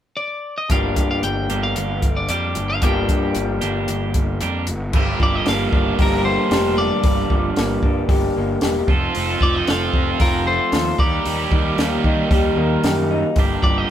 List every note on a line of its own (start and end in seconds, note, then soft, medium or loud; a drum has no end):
0.17 0.54 D5 medium
0.58 0.71 D#5 medium
0.69 0.95 G1 medium
0.69 1.52 G2 medium
0.69 2.81 G2 medium
0.69 1.48 D3 medium
0.69 2.81 D3 medium
0.69 2.83 F3 medium
0.69 1.50 G3 medium
0.69 1.50 A#3 medium
0.69 2.84 A#3 medium
0.69 1.49 D4 medium
0.69 2.84 D4 medium
0.69 1.49 G4 medium
0.69 1.10 F5 medium
0.69 kick medium
0.69 closed hi-hat medium
0.73 2.85 G4 medium
0.96 1.22 G2 medium
0.96 kick medium
0.96 closed hi-hat medium
1.11 1.23 F5 medium
1.23 1.49 G1 medium
1.23 1.61 G5 medium
1.23 closed hi-hat medium
1.50 1.75 G1 medium
1.50 2.29 G2 medium
1.50 2.29 D3 medium
1.50 2.30 G3 medium
1.50 2.31 A#3 medium
1.50 2.30 D4 medium
1.50 2.31 G4 medium
1.50 closed hi-hat medium
1.63 2.18 F5 medium
1.76 2.27 G1 medium
1.76 closed hi-hat medium
2.02 kick medium
2.02 closed hi-hat medium
2.17 2.28 D5 medium
2.29 2.55 F2 medium
2.29 2.81 G2 medium
2.29 2.80 D3 medium
2.29 2.82 G3 medium
2.29 2.83 A#3 medium
2.29 2.83 D4 medium
2.29 2.83 G4 medium
2.29 2.70 D5 medium
2.29 closed hi-hat medium
2.55 2.81 G1 medium
2.55 closed hi-hat medium
2.70 2.83 F5 medium
2.81 3.07 G1 medium
2.81 3.60 G2 medium
2.81 4.65 G2 medium
2.81 3.60 D3 medium
2.81 4.66 D3 medium
2.81 4.66 F3 medium
2.81 3.60 G3 medium
2.81 3.61 A#3 medium
2.81 4.67 A#3 medium
2.81 3.60 D4 medium
2.81 4.67 D4 medium
2.81 3.60 G4 medium
2.81 4.67 G4 medium
2.81 4.41 G5 medium
2.81 kick medium
2.81 closed hi-hat medium
3.09 3.34 G2 medium
3.09 kick medium
3.09 closed hi-hat medium
3.35 3.60 G1 medium
3.35 closed hi-hat medium
3.61 3.87 G1 medium
3.61 4.38 G2 medium
3.61 4.40 D3 medium
3.61 4.40 G3 medium
3.61 4.40 A#3 medium
3.61 4.39 D4 medium
3.61 4.39 G4 medium
3.61 closed hi-hat soft
3.88 4.38 G1 medium
3.88 closed hi-hat medium
4.14 kick medium
4.14 closed hi-hat medium
4.40 4.70 F2 medium
4.40 4.65 G2 medium
4.40 4.66 D3 medium
4.40 4.66 G3 medium
4.40 4.66 A#3 medium
4.40 4.66 D4 medium
4.40 4.67 G4 medium
4.40 closed hi-hat medium
4.67 4.93 G1 medium
4.67 closed hi-hat medium
4.93 5.13 G1 medium
4.93 8.89 G2 medium
4.93 6.26 G2 medium
4.93 8.89 D3 medium
4.93 8.87 G3 medium
4.93 8.88 A#3 medium
4.93 8.89 D4 medium
4.93 8.90 G4 medium
4.93 kick loud
4.93 crash medium
5.20 5.38 G1 medium
5.20 6.54 F3 medium
5.20 5.35 D5 medium
5.20 kick medium
5.35 5.48 D#5 medium
5.46 5.66 G1 medium
5.46 6.25 A#3 medium
5.46 6.02 F5 medium
5.46 snare medium
5.46 open hi-hat soft
5.73 5.91 G1 medium
5.73 6.77 D4 medium
5.73 kick medium
5.99 6.36 G1 medium
5.99 6.50 G4 medium
5.99 6.17 A#4 medium
5.99 kick loud
5.99 open hi-hat soft
6.18 6.25 A#4 medium
6.25 7.57 A#3 medium
6.25 6.74 C5 medium
6.51 6.89 F1 medium
6.51 7.83 G4 medium
6.51 snare medium
6.51 open hi-hat soft
6.78 7.82 D4 medium
6.78 8.32 D5 medium
7.03 7.23 G1 medium
7.03 8.36 G2 medium
7.03 kick loud
7.03 open hi-hat soft
7.30 7.49 G1 medium
7.30 8.63 F3 medium
7.30 kick medium
7.56 7.76 G1 medium
7.56 8.35 A#3 medium
7.56 snare medium
7.56 open hi-hat soft
7.83 8.02 G2 medium
7.83 8.89 D4 medium
7.83 kick medium
8.09 8.28 G1 medium
8.09 8.61 G4 medium
8.09 kick loud
8.09 open hi-hat soft
8.37 8.55 G1 medium
8.37 8.89 A#3 medium
8.61 8.81 E1 medium
8.61 8.89 G4 medium
8.61 snare loud
8.61 open hi-hat soft
8.87 9.07 F1 medium
8.87 9.15 F2 medium
8.87 10.99 F3 medium
8.87 10.99 C4 medium
8.87 11.00 F4 medium
8.87 11.01 A4 medium
8.87 kick loud
9.15 9.34 F1 medium
9.15 10.47 F2 medium
9.15 open hi-hat soft
9.41 9.60 F1 medium
9.41 10.74 F3 medium
9.41 9.55 D5 medium
9.41 kick medium
9.55 9.68 D#5 medium
9.67 9.87 F1 medium
9.67 10.46 A3 medium
9.67 10.23 F5 medium
9.67 snare medium
9.67 open hi-hat soft
9.93 10.12 F1 medium
9.93 11.00 C4 medium
9.93 kick medium
10.20 10.58 F1 medium
10.20 10.73 F4 medium
10.20 10.47 A#4 medium
10.20 kick loud
10.20 open hi-hat medium
10.47 11.00 A3 medium
10.47 10.96 C5 medium
10.72 10.92 D#2 medium
10.72 11.00 F4 medium
10.72 snare loud
10.72 open hi-hat soft
10.98 11.18 D#2 medium
10.98 13.37 D#3 medium
10.98 11.26 D#3 medium
10.98 13.38 G3 medium
10.98 13.38 A#3 medium
10.98 13.38 D#4 medium
10.98 13.39 G4 medium
10.98 12.54 D5 medium
10.98 kick loud
11.25 11.45 D#2 medium
11.25 11.52 D#3 medium
11.25 open hi-hat soft
11.51 11.70 D#2 medium
11.51 12.85 D#3 medium
11.51 kick medium
11.78 11.97 D#2 medium
11.78 12.57 A#3 medium
11.78 snare medium
11.78 open hi-hat soft
12.04 12.23 D#3 medium
12.04 13.10 D#4 medium
12.04 kick medium
12.30 12.50 D#2 medium
12.30 12.83 G4 medium
12.30 kick loud
12.30 open hi-hat soft
12.57 12.76 D#2 medium
12.57 13.90 A#3 medium
12.84 13.22 F#2 medium
12.84 13.66 G4 medium
12.84 snare loud
12.84 open hi-hat soft
13.11 13.38 D#4 medium
13.36 13.56 G1 medium
13.36 13.90 G2 medium
13.36 13.90 D3 medium
13.36 13.90 G3 medium
13.36 13.90 A#3 medium
13.36 13.90 D4 medium
13.36 13.90 G4 medium
13.36 kick loud
13.36 open hi-hat soft
13.63 13.82 G1 medium
13.63 13.90 F3 medium
13.63 13.78 D5 medium
13.63 kick medium
13.78 13.90 D#5 medium